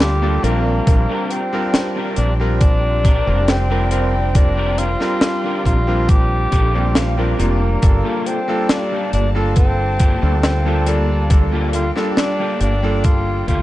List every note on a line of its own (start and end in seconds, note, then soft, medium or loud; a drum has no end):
0.00 0.38 D2 loud
0.00 0.17 G3 medium
0.00 0.17 A#3 medium
0.00 0.40 A#3 medium
0.00 0.17 D4 medium
0.00 0.17 F4 medium
0.00 0.45 G4 loud
0.00 13.62 G4 medium
0.00 0.18 A4 medium
0.00 0.40 F5 medium
0.00 0.40 A5 medium
0.00 snare loud
0.00 closed hi-hat medium
0.22 0.40 G3 medium
0.22 0.42 A#3 medium
0.22 0.40 A#3 medium
0.22 0.40 D4 medium
0.22 0.43 F4 medium
0.22 0.41 F4 medium
0.22 0.43 G4 medium
0.22 0.44 A4 loud
0.22 0.41 A4 medium
0.43 0.80 A#1 medium
0.43 0.82 G3 medium
0.43 1.32 A#3 loud
0.43 0.96 C4 loud
0.43 0.82 C4 medium
0.43 0.96 D4 medium
0.43 0.82 D4 medium
0.43 0.82 F4 medium
0.43 0.96 G4 medium
0.43 0.82 A#4 loud
0.43 0.96 A#4 loud
0.43 7.79 C5 medium
0.43 7.79 D5 medium
0.43 7.79 G5 medium
0.43 closed hi-hat medium
0.87 1.06 A#1 loud
0.87 1.47 G3 medium
0.87 1.48 C4 medium
0.87 1.48 D4 medium
0.87 1.48 F4 medium
0.87 1.48 A#4 medium
0.87 kick loud
0.87 closed hi-hat medium
1.09 1.41 C4 loud
1.09 1.42 D4 loud
1.09 1.42 G4 loud
1.09 1.42 A#4 loud
1.31 1.91 C4 loud
1.31 closed hi-hat medium
1.53 2.34 G3 loud
1.53 2.34 C4 medium
1.53 2.35 D4 medium
1.53 2.35 F4 medium
1.53 2.35 A#4 loud
1.74 muted clean electric guitar stroke soft
1.74 snare loud
1.74 closed hi-hat loud
1.96 2.28 C4 medium
1.96 2.29 D4 medium
1.96 2.29 G4 medium
1.96 2.29 A#4 loud
2.16 3.21 A#1 medium
2.16 2.34 D4 loud
2.16 closed hi-hat medium
2.40 2.99 G3 medium
2.40 2.99 C4 medium
2.40 3.00 D4 medium
2.40 3.00 F4 medium
2.40 3.00 A#4 loud
2.60 3.49 D4 loud
2.60 muted clean electric guitar stroke soft
2.60 kick loud
2.60 closed hi-hat medium
3.04 3.37 C4 loud
3.04 3.37 D4 loud
3.04 3.38 G4 loud
3.04 3.38 A#4 loud
3.04 kick loud
3.04 closed hi-hat medium
3.26 4.95 F1 loud
3.26 3.65 G3 medium
3.26 3.65 C4 medium
3.26 3.65 D4 medium
3.26 3.65 F4 medium
3.26 3.65 A#4 medium
3.48 3.90 C4 loud
3.48 snare loud
3.48 closed hi-hat medium
3.69 3.88 G3 medium
3.69 4.13 C4 medium
3.69 3.88 C4 medium
3.69 4.14 D4 medium
3.69 3.88 D4 medium
3.69 3.88 F4 medium
3.69 4.14 G4 medium
3.69 4.14 A#4 loud
3.69 3.89 A#4 medium
3.91 4.30 G3 medium
3.91 4.37 C4 medium
3.91 4.30 C4 medium
3.91 4.30 D4 medium
3.91 4.30 F4 medium
3.91 4.30 A#4 loud
3.91 closed hi-hat medium
4.34 4.95 G3 medium
4.34 4.95 C4 medium
4.34 4.95 D4 medium
4.34 4.80 D4 loud
4.34 4.96 F4 medium
4.34 4.96 A#4 medium
4.34 kick loud
4.34 closed hi-hat medium
4.57 4.89 C4 loud
4.57 4.89 D4 loud
4.57 4.90 G4 loud
4.57 4.90 A#4 loud
4.78 5.65 F4 loud
4.78 closed hi-hat medium
5.00 5.82 G3 loud
5.00 5.82 C4 medium
5.00 5.82 D4 medium
5.00 5.82 F4 medium
5.00 5.83 A#4 loud
5.00 snare soft
5.21 muted clean electric guitar stroke soft
5.21 snare loud
5.21 closed hi-hat medium
5.44 5.76 C4 medium
5.44 5.76 D4 medium
5.44 5.77 G4 medium
5.44 5.77 A#4 loud
5.65 6.46 A#1 medium
5.65 6.11 F4 loud
5.65 kick medium
5.65 closed hi-hat medium
5.87 6.47 G3 medium
5.87 6.47 C4 medium
5.87 6.47 D4 medium
5.87 6.47 F4 medium
5.87 6.48 A#4 loud
6.08 7.13 G4 loud
6.08 muted clean electric guitar stroke soft
6.08 kick loud
6.08 closed hi-hat medium
6.51 7.33 A#1 loud
6.51 6.85 C4 loud
6.51 6.85 D4 loud
6.51 6.85 G4 loud
6.51 6.86 A4 loud
6.51 6.93 D5 medium
6.51 kick medium
6.51 closed hi-hat medium
6.74 7.13 G3 medium
6.74 7.13 A#3 medium
6.74 7.13 C4 medium
6.74 7.13 D4 medium
6.74 7.13 F4 medium
6.95 7.36 F5 medium
6.95 snare loud
6.95 closed hi-hat medium
7.17 7.36 G3 medium
7.17 7.61 C4 medium
7.17 7.36 C4 medium
7.17 7.61 D4 medium
7.17 7.36 D4 medium
7.17 7.36 F4 medium
7.17 7.62 G4 medium
7.17 7.62 A#4 loud
7.17 7.36 A#4 medium
7.39 7.75 F1 medium
7.39 7.77 G3 medium
7.39 8.28 A#3 loud
7.39 7.78 A#3 loud
7.39 7.77 C4 medium
7.39 7.78 D4 medium
7.39 7.78 F4 medium
7.39 7.79 A#5 medium
7.39 closed hi-hat medium
7.82 8.01 G1 loud
7.82 8.43 G3 medium
7.82 8.43 A#3 medium
7.82 13.62 A#3 medium
7.82 8.43 D4 medium
7.82 8.43 F4 medium
7.82 8.44 A4 medium
7.82 13.62 F5 medium
7.82 11.28 A5 medium
7.82 kick loud
7.82 closed hi-hat medium
8.04 8.37 A#3 loud
8.04 8.37 F4 loud
8.04 8.37 G4 loud
8.04 8.38 A4 loud
8.26 8.71 C4 loud
8.26 closed hi-hat medium
8.48 9.30 G3 loud
8.48 9.30 A#3 medium
8.48 9.30 D4 medium
8.48 9.30 F4 medium
8.48 9.31 A4 loud
8.69 9.13 D4 loud
8.69 snare loud
8.69 closed hi-hat medium
8.92 9.24 A#3 medium
8.92 9.24 F4 medium
8.92 9.25 G4 medium
8.92 9.25 A4 loud
9.13 10.16 G1 medium
9.13 9.29 D4 loud
9.13 closed hi-hat medium
9.35 9.95 G3 medium
9.35 9.95 A#3 medium
9.35 9.95 D4 medium
9.35 9.95 F4 medium
9.35 9.95 A4 loud
9.56 10.40 C4 loud
9.56 kick loud
9.56 closed hi-hat medium
9.99 10.33 A#3 loud
9.99 10.33 F4 loud
9.99 10.33 G4 loud
9.99 10.34 A4 loud
9.99 kick loud
9.99 closed hi-hat medium
10.22 11.90 D2 loud
10.22 10.60 G3 medium
10.22 10.61 A#3 medium
10.22 10.61 D4 medium
10.22 10.61 F4 medium
10.22 10.61 A4 medium
10.43 10.89 C4 medium
10.43 snare loud
10.43 closed hi-hat medium
10.65 10.83 G3 medium
10.65 11.09 A#3 medium
10.65 10.83 A#3 medium
10.65 10.84 D4 medium
10.65 11.10 F4 medium
10.65 10.84 F4 medium
10.65 11.10 G4 medium
10.65 10.84 A4 medium
10.65 11.10 A4 loud
10.86 11.25 G3 medium
10.86 11.25 A#3 medium
10.86 11.25 D4 medium
10.86 11.48 D4 medium
10.86 11.26 F4 medium
10.86 11.26 A4 loud
10.86 closed hi-hat medium
11.30 11.91 G3 medium
11.30 11.91 A#3 medium
11.30 11.91 D4 medium
11.30 11.91 F4 medium
11.30 11.91 A4 medium
11.30 13.62 G5 loud
11.30 kick loud
11.30 closed hi-hat medium
11.52 11.85 A#3 loud
11.52 11.85 F4 loud
11.52 11.85 G4 loud
11.52 11.86 A4 loud
11.73 11.90 F4 loud
11.73 closed hi-hat medium
11.96 12.78 G3 loud
11.96 12.78 A#3 medium
11.96 12.78 D4 medium
11.96 12.78 F4 medium
11.96 12.78 A4 loud
11.96 snare soft
12.17 12.58 D4 loud
12.17 muted clean electric guitar stroke soft
12.17 snare loud
12.17 closed hi-hat medium
12.39 12.72 A#3 medium
12.39 12.72 F4 medium
12.39 12.72 G4 medium
12.39 12.73 A4 loud
12.61 13.42 G1 medium
12.61 13.06 D4 loud
12.61 closed hi-hat medium
12.82 13.42 G3 medium
12.82 13.43 A#3 medium
12.82 13.43 D4 medium
12.82 13.43 F4 medium
12.82 13.43 A4 loud
13.04 13.48 F4 loud
13.04 muted clean electric guitar stroke soft
13.04 kick loud
13.04 closed hi-hat medium
13.47 13.62 D2 loud
13.47 13.62 A#3 loud
13.47 13.62 F4 loud
13.47 13.62 G4 loud
13.47 13.62 A4 loud
13.47 kick medium
13.47 closed hi-hat medium